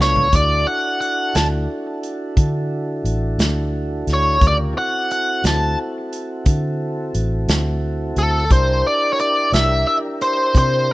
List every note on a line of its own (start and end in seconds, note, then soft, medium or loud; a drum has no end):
0.00 0.30 C#2 medium
0.00 0.29 B3 medium
0.00 0.28 D4 medium
0.00 0.29 F4 medium
0.00 0.28 A4 medium
0.00 0.35 C#5 medium
0.00 snare medium
0.16 floor tom medium
0.33 0.64 D2 medium
0.33 4.38 D4 medium
0.33 4.38 E4 medium
0.33 4.38 F#4 medium
0.33 4.38 A4 medium
0.33 0.66 D5 medium
0.33 kick medium
0.33 closed hi-hat medium
0.67 0.99 F#5 medium
1.01 1.36 F#5 medium
1.01 closed hi-hat medium
1.35 1.66 D2 medium
1.35 1.45 A5 medium
1.35 snare medium
1.35 closed hi-hat medium
2.03 closed hi-hat medium
2.37 3.01 D3 medium
2.37 kick medium
2.37 closed hi-hat medium
3.04 3.36 A1 medium
3.04 closed hi-hat medium
3.38 4.03 D2 medium
3.38 snare loud
3.38 closed hi-hat medium
4.07 4.38 D2 medium
4.07 snare soft
4.07 closed hi-hat medium
4.14 4.45 C#5 medium
4.39 4.73 D2 medium
4.39 4.74 C#3 medium
4.39 4.74 F4 medium
4.39 4.74 G4 medium
4.39 4.74 A#4 medium
4.39 kick medium
4.39 closed hi-hat medium
4.48 4.56 D5 medium
4.73 8.45 C4 medium
4.73 8.45 E4 medium
4.73 8.45 F#4 medium
4.73 8.45 A4 medium
4.78 5.10 F#5 medium
5.11 5.42 F#5 medium
5.11 closed hi-hat medium
5.44 5.75 D2 medium
5.44 5.77 A5 medium
5.44 snare loud
5.44 closed hi-hat medium
6.13 closed hi-hat medium
6.46 7.10 D3 medium
6.46 kick medium
6.46 closed hi-hat medium
7.14 7.45 A1 medium
7.14 closed hi-hat medium
7.48 8.12 D2 medium
7.48 snare loud
7.48 closed hi-hat medium
8.16 8.47 D2 medium
8.16 8.52 A4 medium
8.16 closed hi-hat medium
8.50 8.82 C2 medium
8.50 10.93 D4 medium
8.50 10.93 E4 medium
8.50 10.93 G4 medium
8.50 10.93 A#4 medium
8.50 8.86 C5 medium
8.50 kick medium
8.50 closed hi-hat medium
8.87 9.13 D5 medium
9.13 9.19 C#5 medium
9.19 9.51 D5 medium
9.19 closed hi-hat medium
9.52 9.84 C2 medium
9.52 9.86 E5 medium
9.52 snare loud
9.52 closed hi-hat medium
9.87 9.96 E5 loud
10.21 10.56 C5 medium
10.21 closed hi-hat medium
10.55 10.93 C3 medium
10.55 10.91 C5 medium
10.55 kick medium
10.55 closed hi-hat medium